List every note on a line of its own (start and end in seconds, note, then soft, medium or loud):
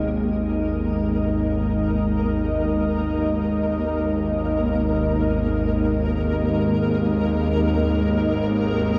0.00 8.99 G#3 medium
0.00 8.99 D#4 medium
0.00 0.17 G#4 medium
0.00 8.99 D#5 medium
0.09 8.99 G#1 medium
0.09 8.99 D#2 medium
0.09 8.99 A#3 medium
0.09 8.99 A#4 medium